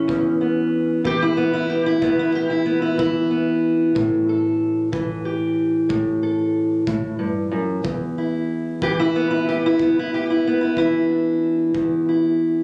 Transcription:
Already playing: steel-string acoustic guitar E3 C#4
0.08 steel-string acoustic guitar E2, kick
0.41 steel-string acoustic guitar B3
1.04 steel-string acoustic guitar E3 G4, kick
1.22 steel-string acoustic guitar E4
1.37 steel-string acoustic guitar B3
1.53 steel-string acoustic guitar E4
1.70 steel-string acoustic guitar G4
1.86 steel-string acoustic guitar E4
2.01 steel-string acoustic guitar E2 B3, kick
2.19 steel-string acoustic guitar E4
2.35 steel-string acoustic guitar G4
2.50 steel-string acoustic guitar E4
2.66 steel-string acoustic guitar B3
2.82 steel-string acoustic guitar E4
2.97 steel-string acoustic guitar E3 E4, kick
3.31 steel-string acoustic guitar B3
3.95 steel-string acoustic guitar A2, kick
4.29 steel-string acoustic guitar A4
4.92 steel-string acoustic guitar E3, kick
5.25 steel-string acoustic guitar G4
5.89 steel-string acoustic guitar A2, kick
6.23 steel-string acoustic guitar A4
6.87 steel-string acoustic guitar A2, kick
7.19 steel-string acoustic guitar G2
7.51 steel-string acoustic guitar F#2
7.84 steel-string acoustic guitar E2, kick
8.18 steel-string acoustic guitar E4
8.82 steel-string acoustic guitar E3 G4, kick
9.00 steel-string acoustic guitar E4
9.16 steel-string acoustic guitar B3
9.31 steel-string acoustic guitar E4
9.49 steel-string acoustic guitar G4
9.66 steel-string acoustic guitar E4
9.78 steel-string acoustic guitar E2 B3, kick
9.99 steel-string acoustic guitar E4
10.14 steel-string acoustic guitar G4
10.30 steel-string acoustic guitar E4
10.47 steel-string acoustic guitar B3
10.61 steel-string acoustic guitar E4
10.77 steel-string acoustic guitar E3 E4, kick
11.09 steel-string acoustic guitar D4
11.74 steel-string acoustic guitar E2, kick
12.09 steel-string acoustic guitar E4

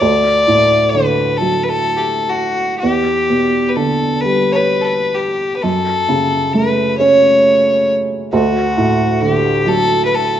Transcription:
0.00 felt piano D2, fiddle D5
0.47 felt piano A2
0.89 fiddle B4
0.94 felt piano D3
1.37 felt piano F#3, fiddle A4
1.63 fiddle B4
1.69 fiddle A4
1.96 fiddle G4 A4
2.29 fiddle F#4
2.78 fiddle G4
2.83 felt piano E2
3.30 felt piano B2
3.68 fiddle B4
3.76 felt piano D3, fiddle A4
4.20 felt piano G3, fiddle B4
4.52 fiddle B4 C#5
4.81 fiddle A4 B4
5.14 fiddle G4
5.56 fiddle B4
5.62 felt piano F#2, fiddle A4
6.09 felt piano C#3
6.53 felt piano A3, fiddle B4
6.98 felt piano C#4, fiddle C#5
8.33 felt piano D2, fiddle F#4
8.77 felt piano A2
9.21 felt piano D3, fiddle G4
9.66 felt piano F#3, fiddle A4
10.05 fiddle B4
10.14 fiddle A4

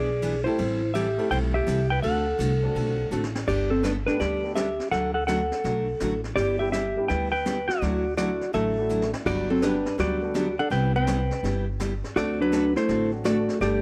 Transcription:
Already playing: upright bass B1, electric slide guitar G#4 D5
0.22 steel-string acoustic guitar E3 B3 D4 G#4, hi-hat pedal, ride
0.44 upright piano A3 C4 E4 G4 A4, electric slide guitar E4 C5, ride
0.58 upright bass A1, steel-string acoustic guitar E3 G3 C4 E4 A4, ride
0.94 steel-string acoustic guitar E3 G3 C4 E4 A4, electric slide guitar G4 E5, hi-hat pedal, ride
1.18 upright piano A3 C4 E4 G4 A4, ride
1.31 upright bass B1, steel-string acoustic guitar E3 G3 C4 E4 A4, electric slide guitar C5 G5, ride
1.54 electric slide guitar G4 E5
1.66 upright bass C2, steel-string acoustic guitar E3 G3 C4 E4 A4, hi-hat pedal, ride
1.90 electric slide guitar B4 G5
2.02 upright bass D2, steel-string acoustic guitar D3 A3 C4 F#4 A4, electric slide guitar A4 F#5, ride
2.38 upright bass C2, steel-string acoustic guitar D3 A3 C4 F#4 A4, hi-hat pedal, ride
2.62 upright piano A3 C4 D4 F#4 A4
2.75 upright bass B1, steel-string acoustic guitar D3 A3 C4 F#4 A4, ride
3.11 upright bass A1, steel-string acoustic guitar D3 A3 C4 F#4 A4, hi-hat pedal
3.23 snare
3.35 snare
3.47 upright bass G1, steel-string acoustic guitar G3 B3 D4 A4, electric slide guitar G4 D5, brush sweep, kick, snare, crash
3.70 electric slide guitar C4 A4
3.83 steel-string acoustic guitar G3 B3 D4 A4, electric slide guitar D4 B4, snare, hi-hat pedal
4.07 upright piano A3 B3 D4 G4 A4, electric slide guitar D4 B4, snare
4.19 upright bass D2, steel-string acoustic guitar G3 B3 D4 A4, electric slide guitar G4 D5, brush sweep, snare
4.43 upright piano A3 B3 D4 G4 A4
4.55 steel-string acoustic guitar G3 B3 D4 A4, electric slide guitar G4 E5, snare, hi-hat pedal
4.80 snare
4.91 upright bass D2, steel-string acoustic guitar D3 F#3 A3 D4 F#4, electric slide guitar A4 F#5, brush sweep, snare
5.14 electric slide guitar A4 F#5
5.27 steel-string acoustic guitar D3 F#3 A3 D4 F#4, electric slide guitar A4 F#5, snare, hi-hat pedal
5.51 snare
5.63 upright bass B1, steel-string acoustic guitar D3 F#3 A3 D4 F#4, brush sweep, snare
6.00 upright bass A1, steel-string acoustic guitar D3 F#3 A3 D4 F#4, snare, hi-hat pedal
6.24 snare
6.36 upright bass G1, steel-string acoustic guitar G3 B3 E4 G4, electric slide guitar G4 D5, brush sweep, snare
6.59 upright piano G3 B3 D4 E4 G4, electric slide guitar G4 E5
6.72 steel-string acoustic guitar G3 B3 E4 G4, electric slide guitar G4 E5, snare, hi-hat pedal
6.96 upright piano G3 B3 D4 E4 G4
7.08 upright bass D2, steel-string acoustic guitar G3 B3 E4 G4, electric slide guitar B4 G5, brush sweep, snare
7.32 electric slide guitar B4 G5
7.45 steel-string acoustic guitar G3 B3 E4 G4, snare, hi-hat pedal
7.68 electric slide guitar F#4 D5, snare
7.81 upright bass D2, steel-string acoustic guitar D3 F#3 A3 E4 F#4, brush sweep, snare
8.17 steel-string acoustic guitar D3 F#3 A3 E4 F#4, upright piano F#3 A3 D4 E4 F#4, electric slide guitar F#4 D5, snare, hi-hat pedal
8.41 snare
8.53 upright bass A1, steel-string acoustic guitar D3 F#3 A3 E4 F#4, hollow-body jazz guitar A3, electric slide guitar A4 E5, brush sweep, snare
8.78 upright piano F#3 A3 D4 E4 F#4
8.89 steel-string acoustic guitar D3 F#3 A3 E4 F#4, hi-hat pedal
9.02 snare
9.13 snare
9.26 upright bass G1, steel-string acoustic guitar D3 F#3 B3 D4 G4, hollow-body jazz guitar G3, electric slide guitar F#4 D5, brush sweep, kick, snare, crash
9.50 hollow-body jazz guitar F#3, electric slide guitar C4 A4
9.62 steel-string acoustic guitar D3 F#3 B3 D4 G4, upright piano G3 B3 D4 F#4 G4, hollow-body jazz guitar G3, electric slide guitar D4 B4, snare, hi-hat pedal
9.85 snare
9.98 upright bass D2, steel-string acoustic guitar D3 F#3 B3 D4 G4, hollow-body jazz guitar G3, electric slide guitar F#4 D5, brush sweep, snare
10.22 upright piano G3 B3 D4 F#4 A4
10.34 steel-string acoustic guitar D3 F#3 B3 D4 G4, snare, hi-hat pedal
10.59 hollow-body jazz guitar D4, electric slide guitar A4 F#5
10.70 upright bass C2, steel-string acoustic guitar C3 G3 B3 E4 G4, hollow-body jazz guitar C4, electric slide guitar B4 G5, brush sweep, snare
10.96 hollow-body jazz guitar C4, electric slide guitar B4 G5
11.07 steel-string acoustic guitar C3 G3 B3 E4 G4, snare, hi-hat pedal
11.31 snare
11.43 upright bass G1, steel-string acoustic guitar C3 G3 B3 E4 G4, brush sweep, snare
11.80 steel-string acoustic guitar C3 G3 B3 E4 G4, snare, hi-hat pedal
12.04 snare
12.16 upright bass D2, steel-string acoustic guitar D3 A3 C4 F#4 A4, hollow-body jazz guitar A3, electric slide guitar F#4 D5, brush sweep, snare
12.41 hollow-body jazz guitar F#3, electric slide guitar D4 B4
12.52 steel-string acoustic guitar D3 A3 C4 F#4 A4, snare, hi-hat pedal
12.76 hollow-body jazz guitar A3, electric slide guitar E4 C5, snare
12.88 upright bass A1, steel-string acoustic guitar D3 A3 C4 F#4 A4, brush sweep, snare
13.12 upright piano F#3 A3 C4 D4 F#4
13.24 steel-string acoustic guitar D3 A3 C4 F#4 A4, hollow-body jazz guitar A3, electric slide guitar F#4 D5, snare, hi-hat pedal
13.49 snare
13.61 upright bass G1, steel-string acoustic guitar G3 B3 D4 A4, hollow-body jazz guitar A3, electric slide guitar G4 D5, brush sweep, snare

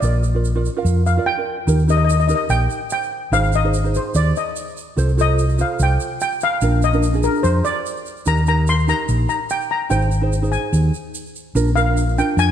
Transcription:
0.00 fingered electric bass A#1, ukulele F4 A#4, steel pan D5, shaker
0.05 ukulele D5
0.24 shaker
0.35 ukulele F4 A#4 D5
0.45 shaker
0.55 ukulele F4 A#4 D5
0.65 shaker
0.77 ukulele F4 A#4 F5
0.85 fingered electric bass F2, shaker
1.06 steel pan F5, shaker
1.17 ukulele F4 A#4 D5
1.26 steel pan G5
1.37 ukulele F4 A#4 D5
1.67 fingered electric bass D#2, ukulele D#4 G4 A#4, shaker
1.79 shaker
1.88 ukulele D#4 G4 A#4, steel pan D#5, shaker
1.97 steel pan D#5
2.04 steel pan D#5
2.09 steel pan D#5, shaker
2.20 steel pan D#5, shaker
2.28 ukulele D#4 G4 A#4, steel pan D#5, shaker
2.35 steel pan D#5
2.49 fingered electric bass A#1, steel pan G5, shaker
2.70 shaker
2.90 steel pan G5, shaker
3.03 shaker
3.32 fingered electric bass G#1, ukulele D#4 G#4 C5, steel pan F5, shaker
3.44 shaker
3.52 steel pan D#5, shaker
3.64 ukulele D#4 G#4 C5
3.74 shaker
3.84 ukulele D#4 G#4 C5, shaker
3.95 steel pan C5, shaker
4.14 fingered electric bass D#2, steel pan D5, shaker
4.36 steel pan D#5, shaker
4.56 shaker
4.68 shaker
4.77 shaker
4.96 fingered electric bass C2, ukulele F4 A4 C5, shaker
5.09 shaker
5.17 ukulele F4 A4 C5, steel pan D#5, shaker
5.39 shaker
5.49 shaker
5.58 ukulele F4 A4 C5, steel pan F5, shaker
5.79 fingered electric bass C2, steel pan G5, shaker
6.00 shaker
6.20 steel pan G5, shaker
6.32 shaker
6.40 steel pan F5, shaker
6.61 fingered electric bass A#1, ukulele D4 F4 A#4, shaker
6.82 steel pan D#5, shaker
6.93 ukulele D4 F4 A#4, shaker
7.03 shaker
7.13 ukulele D4 F4 G#4, shaker
7.23 steel pan A#4, shaker
7.35 shaker
7.43 fingered electric bass F2, steel pan C5, shaker
7.65 steel pan D5, shaker
7.86 shaker
7.97 shaker
8.06 shaker
8.17 shaker
8.26 fingered electric bass D#2, ukulele D#4 G4 A#4, steel pan A#5, shaker
8.37 shaker
8.47 ukulele D#4 G4 A#4, steel pan A#5, shaker
8.67 steel pan C6, shaker
8.79 shaker
8.87 ukulele D#4 G4 A#4, steel pan A#5, shaker
9.09 fingered electric bass A#1, shaker
9.29 steel pan A#5, shaker
9.50 steel pan G5, shaker
9.61 shaker
9.71 steel pan A#5
9.89 fingered electric bass G#1, ukulele D#4 G#4 C5, steel pan G5, shaker
10.02 shaker
10.11 shaker
10.21 ukulele D#4 G#4 C5
10.33 shaker
10.42 ukulele D#4 G#4 C5, shaker
10.52 steel pan G#5, shaker
10.73 fingered electric bass D#2, shaker
10.94 shaker
11.15 shaker
11.26 shaker
11.36 shaker
11.55 fingered electric bass A#1, ukulele D4 F4 A#4, shaker
11.67 shaker
11.76 ukulele D4 F4 A#4, steel pan F5, shaker
11.97 shaker
12.09 shaker
12.18 ukulele D4 F4 A#4, steel pan G5, shaker
12.37 fingered electric bass F2, steel pan G#5, shaker

